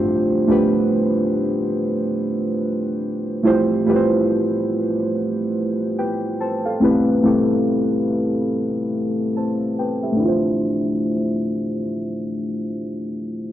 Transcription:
0.00 0.39 A3 medium
0.00 0.40 D4 medium
0.00 3.44 E4 soft
0.00 0.40 F4 medium
0.00 0.41 G4 medium
0.00 0.41 C5 loud
0.47 2.00 A3 medium
0.47 2.01 D4 medium
0.47 2.01 F4 medium
0.47 2.02 G4 medium
0.52 2.02 B4 medium
3.43 3.82 A3 medium
3.43 3.82 E4 medium
3.43 3.83 F4 medium
3.43 3.83 G4 medium
3.43 3.84 C5 medium
3.86 5.39 A3 medium
3.86 5.39 E4 medium
3.86 5.39 F4 medium
3.86 5.40 G4 medium
3.86 3.95 B4 medium
3.96 5.44 C5 medium
5.99 6.38 B4 medium
5.99 6.38 G5 medium
6.40 6.64 C5 medium
6.40 6.63 A5 medium
6.65 7.05 A4 medium
6.65 7.05 F5 medium
6.80 7.19 A3 medium
6.80 7.20 C4 medium
6.80 7.20 E4 medium
6.80 7.21 G4 medium
6.84 7.21 B4 medium
7.23 8.76 A3 medium
7.23 8.77 C4 medium
7.23 8.77 E4 medium
7.23 8.77 G4 medium
7.23 8.78 A4 medium
9.36 9.76 C5 soft
9.36 9.76 A5 medium
9.79 10.02 B4 medium
9.79 10.02 G5 medium
10.03 10.43 G4 soft
10.03 10.43 E5 medium
10.12 13.52 A3 medium
10.16 13.52 D4 medium
10.16 13.52 E4 medium
10.24 13.52 F4 medium
10.24 13.52 C5 medium

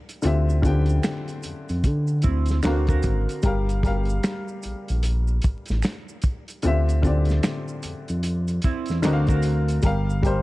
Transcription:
0.09 closed hi-hat medium
0.09 maracas medium
0.22 1.00 D2 loud
0.22 0.59 D3 medium
0.22 0.59 C4 medium
0.22 0.60 F4 medium
0.22 0.60 G4 medium
0.22 closed hi-hat medium
0.22 maracas medium
0.27 0.61 E5 medium
0.50 maracas soft
0.62 2.05 D3 medium
0.62 2.05 C4 medium
0.62 2.06 F4 medium
0.62 2.06 G4 medium
0.62 kick loud
0.62 closed hi-hat medium
0.62 maracas soft
0.67 2.07 G5 loud
0.86 closed hi-hat soft
0.86 maracas soft
1.03 finger snap medium
1.03 snare loud
1.03 closed hi-hat medium
1.03 maracas medium
1.28 closed hi-hat soft
1.28 maracas soft
1.43 1.54 F2 soft
1.43 closed hi-hat medium
1.43 maracas soft
1.69 1.86 F2 medium
1.69 closed hi-hat soft
1.69 maracas soft
1.84 2.27 D3 loud
1.84 kick medium
1.84 closed hi-hat medium
1.84 maracas medium
2.07 maracas soft
2.22 2.61 D2 loud
2.22 2.62 C4 medium
2.22 2.61 E4 medium
2.22 kick medium
2.22 closed hi-hat medium
2.22 maracas soft
2.46 closed hi-hat soft
2.46 maracas soft
2.50 snare soft
2.63 3.01 D2 loud
2.63 3.35 D3 medium
2.63 3.35 C4 medium
2.63 2.88 D4 medium
2.63 2.87 F#4 medium
2.63 3.36 F#4 medium
2.63 finger snap medium
2.63 snare loud
2.63 closed hi-hat medium
2.63 maracas medium
2.65 3.36 A#4 medium
2.65 3.37 F5 medium
2.65 finger snap medium
2.87 3.41 F#4 medium
2.87 3.41 A#4 medium
2.87 kick medium
2.87 closed hi-hat soft
2.87 maracas soft
3.02 3.27 G#1 medium
3.02 kick medium
3.02 closed hi-hat medium
3.02 maracas soft
3.29 closed hi-hat medium
3.29 maracas soft
3.42 4.20 G1 loud
3.42 3.79 G3 medium
3.42 3.79 G4 medium
3.42 3.80 A#4 medium
3.42 kick loud
3.42 closed hi-hat medium
3.42 maracas medium
3.47 3.81 F5 medium
3.69 closed hi-hat soft
3.69 maracas medium
3.83 5.25 G3 medium
3.83 5.26 G4 medium
3.83 5.27 A#4 medium
3.83 kick medium
3.83 closed hi-hat medium
3.83 maracas soft
3.87 5.27 F5 medium
4.05 closed hi-hat soft
4.09 maracas soft
4.23 finger snap medium
4.23 snare loud
4.23 closed hi-hat medium
4.23 maracas medium
4.48 maracas soft
4.63 4.75 A#1 soft
4.63 closed hi-hat medium
4.63 maracas medium
4.88 5.40 A#1 medium
4.88 closed hi-hat soft
4.88 maracas soft
5.03 closed hi-hat medium
5.03 maracas medium
5.28 maracas soft
5.42 5.55 A1 soft
5.42 kick medium
5.42 closed hi-hat medium
5.42 maracas soft
5.66 closed hi-hat soft
5.66 maracas soft
5.70 5.83 A1 medium
5.70 snare soft
5.83 finger snap medium
5.83 snare loud
5.83 closed hi-hat medium
5.83 maracas medium
5.85 finger snap medium
6.09 maracas soft
6.22 kick medium
6.22 closed hi-hat medium
6.22 maracas medium
6.48 closed hi-hat medium
6.48 maracas medium
6.62 7.40 D2 loud
6.62 6.99 D3 medium
6.62 6.99 C4 medium
6.62 7.00 F4 medium
6.62 7.00 G4 medium
6.62 closed hi-hat medium
6.62 maracas medium
6.67 7.01 E5 loud
6.89 closed hi-hat soft
6.89 maracas soft
7.02 8.45 D3 medium
7.02 8.45 C4 medium
7.02 8.46 F4 medium
7.02 8.46 G4 medium
7.02 kick medium
7.02 closed hi-hat medium
7.02 maracas soft
7.07 8.47 D5 medium
7.25 closed hi-hat soft
7.25 maracas soft
7.30 snare soft
7.43 finger snap medium
7.43 snare loud
7.43 closed hi-hat medium
7.43 maracas medium
7.68 maracas soft
7.83 7.94 F2 soft
7.83 closed hi-hat medium
7.83 maracas soft
8.08 8.60 F2 medium
8.08 closed hi-hat soft
8.08 maracas soft
8.23 closed hi-hat medium
8.23 maracas medium
8.48 closed hi-hat soft
8.48 maracas soft
8.62 8.74 E2 medium
8.62 9.02 C4 medium
8.62 9.02 E4 medium
8.62 kick medium
8.62 closed hi-hat medium
8.62 maracas soft
8.86 closed hi-hat soft
8.86 maracas soft
8.90 9.03 E2 medium
8.90 snare soft
9.02 9.80 D2 medium
9.02 9.74 D3 medium
9.02 9.75 C4 medium
9.02 9.28 D4 medium
9.02 9.27 F#4 medium
9.02 9.76 F#4 medium
9.02 finger snap medium
9.02 snare loud
9.02 closed hi-hat medium
9.02 maracas medium
9.05 9.76 A#4 medium
9.05 9.13 D#5 medium
9.05 finger snap loud
9.13 9.80 F5 loud
9.27 9.81 F#4 medium
9.27 9.81 A#4 medium
9.27 kick loud
9.27 closed hi-hat soft
9.27 maracas soft
9.43 closed hi-hat medium
9.43 maracas medium
9.68 closed hi-hat medium
9.68 maracas soft
9.82 10.42 G1 loud
9.82 10.19 G3 medium
9.82 10.19 G4 medium
9.82 10.20 A#4 medium
9.82 kick loud
9.82 closed hi-hat medium
9.82 maracas medium
9.86 10.21 F5 loud
10.10 maracas soft
10.22 10.42 G3 medium
10.22 10.42 G4 medium
10.22 10.42 A#4 medium
10.22 kick medium
10.22 closed hi-hat medium
10.22 maracas medium
10.27 10.42 C5 medium

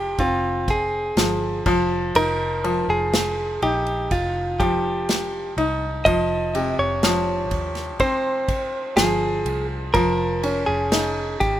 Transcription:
0.00 0.15 F1 medium
0.00 1.17 F3 medium
0.00 0.18 C4 medium
0.00 0.21 G4 medium
0.18 1.13 F1 medium
0.18 1.62 C4 medium
0.18 0.70 F4 medium
0.18 kick medium
0.18 ride medium
0.68 1.63 G#4 medium
0.68 kick loud
0.68 ride medium
1.17 1.62 G1 medium
1.17 1.65 F3 medium
1.17 snare loud
1.17 ride medium
1.66 2.12 F1 loud
1.66 2.63 F3 medium
1.66 kick loud
1.66 crash medium
2.15 2.85 F1 loud
2.15 3.61 D#4 medium
2.15 2.90 A#4 loud
2.15 ride medium
2.64 4.56 F3 medium
2.64 ride medium
2.88 3.58 F1 medium
2.88 3.62 G#4 medium
3.13 snare loud
3.13 ride medium
3.62 4.08 A#1 medium
3.62 5.54 D#4 medium
3.62 4.13 G4 medium
3.62 ride medium
3.87 ride soft
4.11 5.53 F1 loud
4.11 4.62 F4 medium
4.11 kick medium
4.11 ride medium
4.60 6.02 F3 medium
4.60 5.53 G4 medium
4.60 kick loud
4.60 ride medium
5.09 snare loud
5.09 ride medium
5.57 6.02 C2 medium
5.57 6.05 D#4 medium
5.57 ride medium
6.05 6.75 F1 medium
6.05 7.02 F3 medium
6.05 6.79 D#5 loud
6.05 kick loud
6.05 ride medium
6.55 8.45 C3 medium
6.55 ride medium
6.79 7.51 F1 medium
6.79 8.00 C#5 loud
7.03 8.94 F3 medium
7.03 snare loud
7.03 ride medium
7.51 8.00 D#2 medium
7.51 kick medium
7.51 ride medium
7.75 snare soft
7.75 ride soft
8.00 8.93 F1 loud
8.00 9.91 C4 medium
8.00 8.96 C5 medium
8.00 kick medium
8.00 ride medium
8.48 kick loud
8.48 ride medium
8.97 9.42 G1 medium
8.97 9.92 F3 medium
8.97 9.66 G#4 medium
8.97 snare loud
8.97 ride medium
9.45 9.91 C2 medium
9.45 ride medium
9.94 10.64 F1 loud
9.94 11.60 F3 medium
9.94 10.66 A#4 loud
9.94 kick loud
9.94 ride medium
10.43 11.60 C#4 medium
10.43 ride medium
10.66 11.37 F1 medium
10.66 11.40 G#4 medium
10.92 11.60 D#4 medium
10.92 snare loud
10.92 ride medium
11.40 11.60 G#1 medium
11.40 11.60 G4 medium
11.40 kick medium
11.40 ride medium

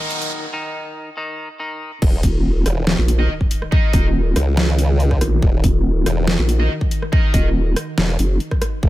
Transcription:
0.00 0.28 D#2 medium
0.00 0.28 A#2 medium
0.00 0.45 D#3 medium
0.00 0.28 F#3 medium
0.00 0.28 D#4 medium
0.00 0.32 D#4 medium
0.00 0.45 D#4 medium
0.00 0.32 A#4 medium
0.00 0.32 F#5 medium
0.00 riser medium
0.11 closed hi-hat medium
0.22 closed hi-hat medium
0.53 1.09 D#3 medium
0.53 1.09 D#4 medium
1.17 1.48 D#3 medium
1.17 1.48 D#4 medium
1.60 1.90 D#3 medium
1.60 1.90 D#4 medium
2.02 2.22 D#1 medium
2.02 8.79 D#3 medium
2.02 8.79 D#4 medium
2.02 8.79 F#4 medium
2.02 8.79 A#4 medium
2.02 kick loud
2.02 crash loud
2.02 sub drop medium
2.23 2.64 D#1 loud
2.23 kick loud
2.23 closed hi-hat medium
2.66 2.96 E1 medium
2.66 cross-stick medium
2.66 closed hi-hat medium
2.87 snare loud
2.98 3.28 A#1 loud
3.08 closed hi-hat medium
3.19 3.30 D#4 medium
3.19 3.30 A#4 medium
3.19 3.30 D#5 loud
3.41 kick medium
3.51 open hi-hat loud
3.62 cross-stick soft
3.72 3.91 D#4 medium
3.72 3.91 A#4 medium
3.72 3.91 D#5 medium
3.72 kick loud
3.93 4.34 D#1 loud
3.93 4.05 D#4 medium
3.93 4.05 A#4 medium
3.93 4.05 D#5 loud
3.93 kick loud
3.93 closed hi-hat medium
4.36 5.20 C#2 loud
4.36 cross-stick medium
4.36 closed hi-hat medium
4.57 snare loud
4.79 closed hi-hat medium
5.00 closed hi-hat soft
5.11 kick medium
5.11 cross-stick soft
5.21 5.41 A#1 medium
5.21 cross-stick medium
5.21 open hi-hat loud
5.42 5.62 D#1 loud
5.42 kick loud
5.64 6.05 D#1 loud
5.64 kick loud
5.64 closed hi-hat medium
6.06 6.37 E1 medium
6.06 cross-stick medium
6.06 closed hi-hat medium
6.28 snare loud
6.39 6.68 A#1 medium
6.49 closed hi-hat medium
6.60 6.71 D#4 medium
6.60 6.71 A#4 medium
6.60 6.71 D#5 loud
6.81 kick medium
6.91 open hi-hat medium
7.02 cross-stick medium
7.12 7.31 D#4 medium
7.12 7.31 A#4 medium
7.12 7.31 D#5 medium
7.12 kick loud
7.34 7.75 D#1 loud
7.34 7.45 D#4 medium
7.34 7.45 A#4 medium
7.34 7.45 D#5 loud
7.34 kick loud
7.34 closed hi-hat medium
7.76 cross-stick medium
7.76 closed hi-hat medium
7.98 8.17 E1 loud
7.98 snare loud
8.19 8.39 F#1 loud
8.19 closed hi-hat medium
8.40 closed hi-hat soft
8.51 kick medium
8.51 cross-stick medium
8.62 cross-stick medium
8.62 open hi-hat medium
8.83 8.89 E1 loud
8.83 8.89 E4 loud
8.83 kick loud

